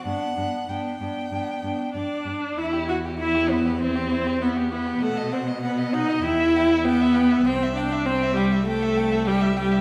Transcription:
<<
  \new Staff \with { instrumentName = "Violin" } { \time 4/4 \key g \major \tempo 4 = 98 d'8 d'8 d'8 d'8 d'8 d'8 d'8 d'8 | \key e \minor e'16 g'16 e'16 g'16 e'16 g'16 e'16 g'16 e'16 g'16 e'16 g'16 e'16 g'16 e'16 g'16 | fis''16 dis''16 fis''16 dis''16 fis''16 dis''16 fis''16 dis''16 g''16 e''16 g''16 e''16 g''16 e''16 g''16 e''16 | g''16 e''16 g''16 e''16 g''16 e''16 g''16 e''16 g''16 e''16 g''16 e''16 g''16 e''16 g''16 e''16 | }
  \new Staff \with { instrumentName = "Violin" } { \time 4/4 \key g \major fis''4 g''2 d''4 | \key e \minor e''8 fis''8 e''8 b'8 c''4 b'8 b'8 | a'8 c''8 b'8 dis''8 e''4 b'4 | c''8 d''8 c''8 g'8 a'4 g'8 g'8 | }
  \new Staff \with { instrumentName = "Viola" } { \time 4/4 \key g \major b8 b8 b8 b8 b8 b8 d'4 | \key e \minor e'8 fis'8 e'8 b8 c'4 b8 b8 | a8 c'8 b8 dis'8 e'4 b4 | c'8 d'8 c'8 g8 a4 g8 g8 | }
  \new Staff \with { instrumentName = "Cello" } { \clef bass \time 4/4 \key g \major g,8 g,8 g,8 g,8 g,8 g,8 g,8 g,8 | \key e \minor e,1 | b,2 e,2 | c,1 | }
>>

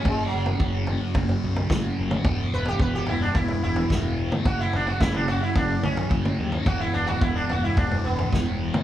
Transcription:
<<
  \new Staff \with { instrumentName = "Sitar" } { \time 4/4 \key fis \mixolydian \tempo 4 = 109 \tuplet 3/2 { gis8 fis4~ } fis16 r2 r8. | r8 b'16 g'16 b'16 g'16 e'16 d'16 e'8 e'8 r4 | fis'16 e'16 d'16 fis'16 e'16 d'16 fis'16 e'16 d'8 cis'8 r4 | fis'16 e'16 d'16 fis'16 e'16 d'16 fis'16 e'16 d'8 b8 r4 | }
  \new Staff \with { instrumentName = "Distorted electric guitar" } { \clef bass \time 4/4 \key fis \mixolydian <fis, cis fis>4. <fis, cis fis>4. <fis, cis fis>4 | <e, b, e>4. <e, b, e>4. <e, b, e>4 | <fis, cis fis>4. <fis, cis fis>4. <fis, cis fis>4 | <e, b, e>4. <e, b, e>4. <e, b, e>4 | }
  \new Staff \with { instrumentName = "Picked electric bass" } { \clef bass \time 4/4 \key fis \mixolydian fis,,8 fis,,8 fis,,4 fis,,8 b,,8 fis,,8 fis,,8 | e,,8 e,,8 e,,8 e,,8 e,,8 e,,8 e,,4 | fis,,8 fis,,8 fis,,4 fis,,8 b,,8 fis,,8 dis,8 | e,,8 e,,8 e,,8 e,,8 e,,8 e,,8 e,,4 | }
  \new DrumStaff \with { instrumentName = "Drums" } \drummode { \time 4/4 <bd tomfh>8. tomfh16 bd8 tomfh8 <bd tomfh>16 tomfh8 tomfh16 <bd sn>8. <tomfh toml>16 | <bd tomfh>8. tomfh16 bd8 tomfh8 <bd tomfh>16 tomfh8 tomfh16 <bd sn>8. <tomfh toml>16 | <bd tomfh>8 tomfh16 tomfh16 <bd sn>16 tomfh16 tomfh8 <bd tomfh>8 toml16 tomfh16 bd16 toml8 tomfh16 | <bd tomfh>8. tomfh16 bd8 tomfh8 <bd tomfh>16 tomfh8 tomfh16 <bd sn>8. <tomfh toml>16 | }
>>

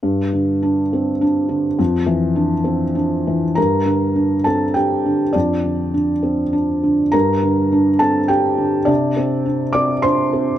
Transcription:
\new Staff \with { instrumentName = "Felt piano" } { \time 3/4 \key g \dorian \tempo 4 = 102 << { r2. | r2. | <bes' bes''>4. <a' a''>8 <g' g''>4 | <d' d''>2. |
<bes' bes''>4. <a' a''>8 <g' g''>4 | <d' d''>4. <d'' d'''>8 <c'' c'''>4 | } \\ { g,8 d8 d'8 c'8 d'8 d8 | f,8 e8 d'8 c'8 d'8 e8 | g,8 d8 d'8 c'8 d'8 d8 | f,8 d8 d'8 c'8 d'8 d8 |
g,8 d8 d'8 c'8 d'8 d8 | c8 c'8 d'8 c'8 d'8 c'8 | } >> }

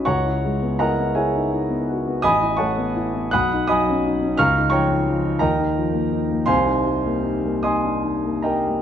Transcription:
<<
  \new Staff \with { instrumentName = "Grand piano" } { \time 6/8 \key cis \dorian \tempo 4. = 55 <cis'' fis'' ais'' cis'''>4 <ais' dis'' fis'' ais''>8 <gis' cis'' e'' gis''>8 r4 | <dis'' gis'' b'' dis'''>8 <cis'' fis'' a'' cis'''>4 <fis'' b'' dis''' fis'''>8 <dis'' gis'' b'' dis'''>4 | <eis'' ais'' cis''' eis'''>8 <cis'' g'' ais'' cis'''>4 <ais' dis'' g'' ais''>4. | \key c \minor <c'' f'' aes'' c'''>4. <ees'' aes'' c''' ees'''>4 <bes' ees'' g'' bes''>8 | }
  \new Staff \with { instrumentName = "Grand piano" } { \time 6/8 \key cis \dorian cis,16 e'16 gis16 b16 e'16 b16 e'16 dis'16 e'16 b16 fis'16 b16 | a,,16 e'16 a16 b16 e'16 b16 b,,16 dis'16 fis16 cis'16 dis'16 cis'16 | cis,16 dis'16 eis16 dis'16 eis16 dis'16 dis,16 dis'16 eis16 ais16 dis'16 ais16 | \key c \minor c,16 ees'16 g16 bes16 ees'16 bes16 ees'16 d'16 ees'16 bes16 g'16 bes16 | }
>>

